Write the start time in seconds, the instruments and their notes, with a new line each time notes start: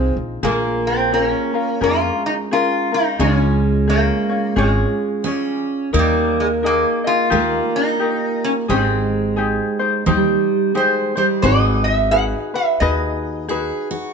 Already playing: upright bass C2, resonator guitar played with a steel bar G#3, steel-string acoustic guitar C4, ukulele D#4 F4 G#4 C5
0.16 upright bass A#1
0.43 upright bass A#1, steel-string acoustic guitar A#3, resonator guitar played with a steel bar A#3, ukulele F4 G#4 A#4
0.87 resonator guitar played with a steel bar C4
1.12 resonator guitar played with a steel bar C4, ukulele C#4 F4 G#4 A#4
1.25 resonator guitar played with a steel bar C#4
1.54 ukulele C#4 F4 A#4
1.81 upright bass F2, ukulele C#4 F4 G#4 A#4, resonator guitar played with a steel bar F4
2.16 steel-string acoustic guitar G#3
2.26 resonator guitar played with a steel bar D#4
2.51 ukulele C#4 F4 G#4 A#4, resonator guitar played with a steel bar F4
2.92 ukulele C#4 F4 A#4, resonator guitar played with a steel bar D#4
3.19 upright bass C#2, steel-string acoustic guitar G#3, ukulele C#4 F4 G#4 C#5, resonator guitar played with a steel bar C#4
3.88 resonator guitar played with a steel bar A#3, ukulele C#4 F4 G#4 C#5
4.29 ukulele C#4 F4 C#5
4.56 upright bass G#1, resonator guitar played with a steel bar G#3, ukulele C#4 F4 G#4 C#5
5.24 steel-string acoustic guitar C#4, ukulele C#4 F4 G#4 C#5
5.29 resonator guitar played with a steel bar G3
5.93 upright bass D#2, steel-string acoustic guitar A#3, ukulele D#4 A#4 D#5
5.99 resonator guitar played with a steel bar G3
6.40 resonator guitar played with a steel bar G#3
6.63 resonator guitar played with a steel bar A#3, ukulele D#4 G#4 A#4 D#5
7.04 ukulele D#4 G#4 D#5, resonator guitar played with a steel bar F4
7.30 upright bass D#2, steel-string acoustic guitar A#3, ukulele D#4 F4 G4 A#4
7.76 resonator guitar played with a steel bar D#4
7.99 ukulele D#4 F4 G4 A#4
8.44 resonator guitar played with a steel bar C#4
8.68 upright bass G#1, steel-string acoustic guitar G#3, resonator guitar played with a steel bar C4, ukulele D#4 G4 G#4 C5
9.36 ukulele D#4 G4 G#4 C5
9.79 ukulele D#4 G4 C5
10.06 upright bass D#2, steel-string acoustic guitar G3, ukulele D#4 G4 C5
10.74 steel-string acoustic guitar G#3, ukulele D#4 G4 G#4 C5, resonator guitar played with a steel bar C5
11.15 steel-string acoustic guitar G3, ukulele D#4 G4 C5, resonator guitar played with a steel bar C5
11.42 upright bass G#1, steel-string acoustic guitar D#4, ukulele F#4 G#4 B4, resonator guitar played with a steel bar D#5
11.84 resonator guitar played with a steel bar E5
12.11 ukulele D#4 F#4 G#4 B4, resonator guitar played with a steel bar F#5
12.54 ukulele F#4 B4, resonator guitar played with a steel bar E5
12.80 upright bass D#2, ukulele D#4 F#4 G#4 B4, resonator guitar played with a steel bar D#5
13.49 ukulele D#4 F#4 G#4 B4, steel-string acoustic guitar G#4
13.91 steel-string acoustic guitar F#4